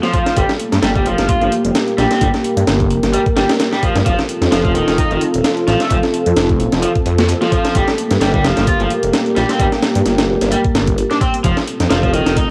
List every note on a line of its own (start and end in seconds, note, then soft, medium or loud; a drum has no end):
0.00 0.12 F3 medium
0.00 0.33 C4 medium
0.00 0.33 F4 medium
0.00 2.17 A4 medium
0.00 snare soft
0.00 closed hi-hat soft
0.14 0.36 F3 medium
0.14 kick medium
0.14 closed hi-hat medium
0.26 snare medium
0.26 closed hi-hat medium
0.36 0.44 G1 loud
0.36 0.48 G3 medium
0.36 4.02 A#3 medium
0.36 4.02 G4 medium
0.36 kick loud
0.36 closed hi-hat medium
0.49 snare medium
0.49 closed hi-hat soft
0.59 closed hi-hat medium
0.72 0.79 G2 medium
0.72 snare medium
0.72 closed hi-hat medium
0.83 1.07 G1 medium
0.83 0.90 G3 loud
0.83 snare loud
0.83 closed hi-hat medium
0.96 1.05 G3 medium
0.96 kick medium
0.96 closed hi-hat soft
1.06 1.14 F1 medium
1.06 1.28 F3 medium
1.06 closed hi-hat medium
1.18 1.28 G1 loud
1.18 snare medium
1.18 closed hi-hat medium
1.29 1.39 G1 soft
1.29 1.40 F4 medium
1.29 kick loud
1.29 closed hi-hat medium
1.42 1.48 G1 medium
1.42 1.51 F3 medium
1.42 closed hi-hat soft
1.52 closed hi-hat medium
1.65 1.71 F1 medium
1.65 closed hi-hat medium
1.75 snare loud
1.75 closed hi-hat soft
1.75 closed hi-hat medium
1.88 closed hi-hat soft
1.98 2.06 A#1 medium
1.98 2.10 G3 medium
1.98 snare soft
1.98 closed hi-hat medium
2.11 2.20 C4 medium
2.11 snare soft
2.11 closed hi-hat medium
2.21 2.29 G1 loud
2.21 2.28 G3 medium
2.21 4.04 A#4 medium
2.21 kick loud
2.21 closed hi-hat soft
2.21 closed hi-hat medium
2.34 snare soft
2.34 closed hi-hat soft
2.44 closed hi-hat medium
2.57 2.63 G2 medium
2.57 closed hi-hat medium
2.67 2.92 G1 medium
2.67 snare loud
2.67 closed hi-hat medium
2.80 kick medium
2.80 closed hi-hat soft
2.90 2.98 F1 medium
2.90 closed hi-hat medium
3.03 3.16 G1 loud
3.03 snare soft
3.03 closed hi-hat medium
3.13 3.21 G3 medium
3.13 closed hi-hat soft
3.13 closed hi-hat medium
3.26 kick medium
3.26 closed hi-hat soft
3.36 3.44 G1 medium
3.36 3.49 G3 medium
3.36 snare loud
3.36 closed hi-hat medium
3.49 snare loud
3.49 closed hi-hat medium
3.60 snare loud
3.60 closed hi-hat medium
3.73 3.82 G3 medium
3.73 snare soft
3.73 closed hi-hat soft
3.83 3.94 F3 medium
3.83 kick medium
3.83 closed hi-hat medium
3.95 4.02 G2 medium
3.95 snare medium
3.95 closed hi-hat medium
4.06 4.14 F1 loud
4.06 4.17 F3 medium
4.06 7.71 C4 medium
4.06 7.72 F4 medium
4.06 9.56 A4 medium
4.06 kick loud
4.06 closed hi-hat soft
4.06 closed hi-hat medium
4.19 snare medium
4.19 closed hi-hat soft
4.29 closed hi-hat medium
4.41 4.48 F2 medium
4.41 snare medium
4.41 closed hi-hat medium
4.52 4.77 F1 medium
4.52 4.59 F3 medium
4.52 snare loud
4.52 closed hi-hat medium
4.65 4.74 F3 medium
4.65 kick medium
4.65 closed hi-hat soft
4.75 4.83 D#1 medium
4.75 4.97 D#3 medium
4.75 closed hi-hat medium
4.88 4.98 F1 loud
4.88 snare medium
4.88 closed hi-hat medium
4.98 5.08 F1 soft
4.98 5.10 D#4 medium
4.98 kick loud
4.98 closed hi-hat soft
4.98 closed hi-hat medium
5.11 5.17 F1 medium
5.11 5.20 D#3 medium
5.11 closed hi-hat soft
5.21 closed hi-hat medium
5.34 5.40 D#1 medium
5.34 closed hi-hat medium
5.44 snare loud
5.44 closed hi-hat medium
5.44 closed hi-hat soft
5.57 closed hi-hat soft
5.67 5.75 A1 medium
5.67 5.79 F3 medium
5.67 snare soft
5.67 closed hi-hat medium
5.80 5.90 A3 medium
5.80 snare soft
5.80 closed hi-hat medium
5.90 5.98 F1 medium
5.90 5.98 F3 medium
5.90 kick loud
5.90 closed hi-hat soft
5.90 closed hi-hat medium
6.03 snare soft
6.03 closed hi-hat soft
6.14 closed hi-hat medium
6.26 6.33 F2 medium
6.26 closed hi-hat medium
6.36 6.61 F1 medium
6.36 snare loud
6.36 closed hi-hat medium
6.49 kick medium
6.49 closed hi-hat soft
6.60 6.68 D#1 medium
6.60 closed hi-hat medium
6.72 6.86 F1 loud
6.72 snare medium
6.72 closed hi-hat medium
6.82 6.90 F3 medium
6.82 closed hi-hat soft
6.82 closed hi-hat medium
6.95 kick medium
6.95 closed hi-hat soft
7.06 7.34 F2 medium
7.06 closed hi-hat medium
7.18 snare loud
7.18 closed hi-hat medium
7.29 closed hi-hat soft
7.29 closed hi-hat medium
7.42 7.51 F3 medium
7.42 snare soft
7.42 closed hi-hat soft
7.52 7.74 F3 medium
7.52 kick medium
7.52 closed hi-hat medium
7.65 snare medium
7.65 closed hi-hat medium
7.75 7.83 G1 loud
7.75 7.87 G3 medium
7.75 11.41 A#3 medium
7.75 11.41 G4 medium
7.75 kick loud
7.75 closed hi-hat soft
7.75 closed hi-hat medium
7.88 snare medium
7.88 closed hi-hat soft
7.98 closed hi-hat medium
8.11 8.17 G2 medium
8.11 snare medium
8.11 closed hi-hat medium
8.21 8.46 G1 medium
8.21 8.28 G3 loud
8.21 snare loud
8.21 closed hi-hat soft
8.21 closed hi-hat medium
8.34 8.43 G3 medium
8.34 kick medium
8.34 closed hi-hat soft
8.44 8.52 F1 medium
8.44 8.66 F3 medium
8.44 snare loud
8.44 closed hi-hat medium
8.57 8.67 G1 loud
8.57 snare medium
8.57 closed hi-hat medium
8.67 8.78 G1 soft
8.67 8.79 F4 medium
8.67 kick loud
8.67 closed hi-hat soft
8.67 closed hi-hat medium
8.80 8.87 G1 medium
8.80 8.89 F3 medium
8.80 closed hi-hat soft
8.90 closed hi-hat medium
9.03 9.10 F1 medium
9.03 closed hi-hat medium
9.13 snare loud
9.13 closed hi-hat soft
9.13 closed hi-hat medium
9.26 closed hi-hat soft
9.36 9.44 A#1 medium
9.36 9.48 G3 medium
9.36 snare soft
9.36 closed hi-hat medium
9.49 9.58 C4 medium
9.49 snare soft
9.49 closed hi-hat medium
9.59 9.67 G1 loud
9.59 9.66 G3 medium
9.59 11.42 A#4 medium
9.59 kick loud
9.59 closed hi-hat medium
9.72 snare soft
9.72 closed hi-hat soft
9.83 snare loud
9.83 closed hi-hat medium
9.95 10.02 G2 medium
9.95 closed hi-hat medium
10.06 10.30 G1 medium
10.06 snare soft
10.06 closed hi-hat medium
10.18 snare loud
10.18 closed hi-hat soft
10.18 closed hi-hat medium
10.29 10.37 F1 medium
10.41 10.55 G1 loud
10.41 snare soft
10.41 closed hi-hat medium
10.52 10.59 G3 medium
10.52 closed hi-hat medium
10.64 kick loud
10.64 closed hi-hat soft
10.75 11.03 G1 medium
10.75 snare loud
10.75 closed hi-hat medium
10.87 kick medium
10.87 closed hi-hat medium
10.98 closed hi-hat medium
11.11 11.16 D4 medium
11.11 snare soft
11.11 closed hi-hat soft
11.21 11.33 C4 medium
11.21 kick loud
11.21 closed hi-hat medium
11.34 closed hi-hat medium
11.44 11.52 F1 loud
11.44 11.56 F3 medium
11.44 12.51 C4 medium
11.44 12.51 F4 medium
11.44 12.51 A4 medium
11.44 kick loud
11.44 closed hi-hat medium
11.57 snare medium
11.57 closed hi-hat soft
11.67 closed hi-hat medium
11.80 11.86 F2 medium
11.80 snare medium
11.80 closed hi-hat medium
11.90 12.15 F1 medium
11.90 11.97 F3 loud
11.90 snare loud
11.90 closed hi-hat medium
12.03 12.13 F3 medium
12.03 kick medium
12.03 closed hi-hat soft
12.13 12.21 D#1 medium
12.13 12.36 D#3 medium
12.13 closed hi-hat medium
12.26 12.36 F1 loud
12.26 snare medium
12.26 closed hi-hat medium
12.37 12.47 F1 soft
12.37 12.48 D#4 medium
12.37 kick loud
12.37 closed hi-hat medium